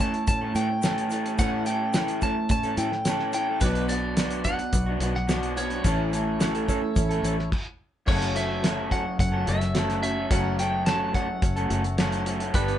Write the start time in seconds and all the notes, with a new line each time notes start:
Already playing: A2 E3 A3 C#4 E4 A4 C#5
0.00 E3 A3 C#4 E4 A4 C#5 A5, kick, closed hi-hat, shaker
0.14 muted clean electric guitar stroke, closed hi-hat
0.27 A2 C#4 E4 A4 C#5 A5, kick, closed hi-hat, shaker
0.41 A3 C#4 A4
0.55 A2 E3 A3 C#4 A4 G5, closed hi-hat, shaker
0.70 muted clean electric guitar stroke
0.82 A2 E3 A3 C#4 E4 A4 C#5, snare, closed hi-hat, shaker
0.98 closed hi-hat
1.09 E3 A3 C#4 A4, closed hi-hat, shaker
1.24 A3 C#4 A4, closed hi-hat
1.37 A2 E3 A3 C#4 E4 A4 C#5 F#5, kick, closed hi-hat, shaker
1.66 E3 A3 C#4 A4 G5, closed hi-hat, shaker
1.93 A2 E3 A3 C#4 E4 A4 C#5, snare, closed hi-hat, shaker
1.97 A4
2.08 closed hi-hat
2.22 E3 A3 C#4 E4 A4 C#5 A5, kick, closed hi-hat, shaker
2.36 muted clean electric guitar stroke
2.49 A2 C#4 E4 A4 C#5 A5, kick, closed hi-hat, shaker
2.63 A3 C#4 A4, closed hi-hat
2.77 A2 E3 A3 C#4 A4 G5, closed hi-hat, shaker
2.92 muted clean electric guitar stroke, snare
3.05 A2 E3 A3 C#4 E4 A4 C#5, snare, closed hi-hat, shaker
3.09 A4
3.19 snare
3.33 E3 A3 C#4 A4 G5, closed hi-hat, shaker
3.48 A3 C#4 A4
3.61 B1 B2 F#3 B3 D4 F#4 B4 D5, kick, closed hi-hat, shaker
3.65 F#4
3.75 closed hi-hat
3.89 F#3 B3 D4 D5, closed hi-hat, shaker
3.93 F#4
4.16 B2 F#3 B3 D4 F#4 B4 D5, snare, closed hi-hat, shaker
4.31 closed hi-hat
4.44 F#3 B3 D4 F#4 B4 D5 F#5, kick, closed hi-hat, shaker
4.59 muted clean electric guitar stroke, closed hi-hat
4.72 B1 D4 F#4 B4 D5, kick, closed hi-hat, shaker
4.86 D4 F#4
4.90 B3
5.00 B1 F#3 B3 D4 F#4, closed hi-hat, shaker
5.15 F#5, muted clean electric guitar stroke, snare
5.27 B2 F#3 B3 D4 F#4 B4 D5, snare, closed hi-hat, shaker
5.43 closed hi-hat
5.55 F#3 B3 D4 F#4 C#5, closed hi-hat, shaker
5.70 B3 D4 F#4, closed hi-hat
5.83 A1 A2 E3 A3 C#4 E4 A4 C#5, kick, closed hi-hat, shaker
6.11 E3 A3 C#4 E4 A4, closed hi-hat, shaker
6.39 A2 E3 A3 C#4 E4 F#4 A4 C#5, snare, closed hi-hat, shaker
6.55 A4, closed hi-hat
6.67 E3 A3 C#4 E4 A4 C#5, kick, closed hi-hat, shaker
6.82 muted clean electric guitar stroke
6.96 A1 C#4 E4 A4 C#5, kick, closed hi-hat, shaker
7.09 A3 C#4 A4, closed hi-hat
7.23 A1 E3 A3 C#4 E4 A4, closed hi-hat, shaker
7.37 muted clean electric guitar stroke, snare
7.52 kick, crash
8.06 F#1 F#2 C#3 F#3 A3 C#4 F#4 A4 C#5, kick, crash
8.22 closed hi-hat
8.34 F#3 A3 C#4 F#4 E5, closed hi-hat
8.38 A4
8.62 F#2 C#3 F#3 A3 C#4 F#4 A4 C#5, snare, closed hi-hat
8.90 F#3 A3 C#4 F#4 A4 C#5 F#5, kick, closed hi-hat
9.05 muted clean electric guitar stroke
9.18 F#1 C#4 F#4 A4 C#5 F#5, kick, closed hi-hat
9.32 F#3 A3 C#4 A4
9.46 F#1 F#3 A3 C#4 F#4 A4 E5, closed hi-hat
9.61 muted clean electric guitar stroke, snare, closed hi-hat
9.74 F#2 C#3 F#3 A3 C#4 F#4 A4 C#5, snare, closed hi-hat
9.90 snare, closed hi-hat
10.01 F#3 A3 C#4 F#4 A4 E5, closed hi-hat
10.15 F#3 A3 C#4 A4
10.29 F#1 F#2 C#3 F#3 A3 C#4 F#4 A4 C#5 F#5, kick, closed hi-hat
10.57 F#3 A3 C#4 F#4 A4 G5, closed hi-hat
10.86 F#2 C#3 F#3 A3 C#4 F#4 A4 C#5 A5, snare, closed hi-hat
11.14 F#3 A3 C#4 F#4 A4 C#5 F#5, kick, closed hi-hat
11.29 muted clean electric guitar stroke
11.42 F#1 C#4 F#4 A4 C#5, kick, closed hi-hat
11.56 F#3 A3 C#4 A4, closed hi-hat
11.70 F#1 F#3 A3 C#4 F#4 A4, closed hi-hat
11.84 muted clean electric guitar stroke, closed hi-hat
11.97 F#2 C#3 F#3 A3 C#4 F#4 A4 C#5, snare, closed hi-hat
12.12 closed hi-hat
12.26 F#3 A3 C#4 F#4 A4, closed hi-hat
12.39 F#3 A3 C#4 A4, closed hi-hat
12.53 G1 G3 B3 D4 G4 A4 B4, kick, closed hi-hat
12.57 A4
12.68 closed hi-hat